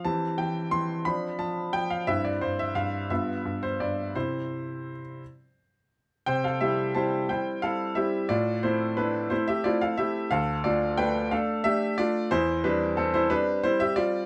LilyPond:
<<
  \new Staff \with { instrumentName = "Grand piano" } { \time 6/8 \key c \major \tempo 4. = 59 << { a''8 g''8 c'''8 b''8 a''8 g''16 f''16 | e''16 d''16 c''16 e''16 f''8 e''8. c''16 d''8 | c''4. r4. | <c'' g''>16 <a' f''>16 <g' e''>8 <c'' a''>8 <c'' g''>8 <a' f''>8 <g' e''>8 |
<f' d''>8 <e' c''>8 <d' b'>8 <e' c''>16 <g' e''>16 <f' d''>16 <a' f''>16 <g' e''>8 | <a' f''>8 <f' d''>8 <b' g''>8 <a' f''>8 <g' e''>8 <f' d''>8 | <e' c''>8 <d' b'>8 <c' a'>16 <e' c''>16 <d' b'>8 <e' c''>16 <g' e''>16 <f' d''>8 | } \\ { <c' g'>4. <c' d'>4. | <c' e'>4. <b f'>4. | r2. | r2. |
r2. | r2. | r2. | } >> }
  \new Staff \with { instrumentName = "Grand piano" } { \time 6/8 \key c \major e8 e8 e8 f8 f8 f8 | g,8 g,8 g,8 g,8 g,8 g,8 | <c c' e'>4. r4. | c8 <g c' e'>8 <g c' e'>8 <g c' e'>8 <g c' e'>8 <g c' e'>8 |
a,8 <a c'>8 <a c' e'>8 <a c'>8 <a c' e'>8 <a c' e'>8 | d,8 <a d'>8 <a d'>8 <a d'>8 <a d'>8 <a d'>8 | e,8 <g c'>8 g8 <g c'>8 <g c'>8 <g c'>8 | }
>>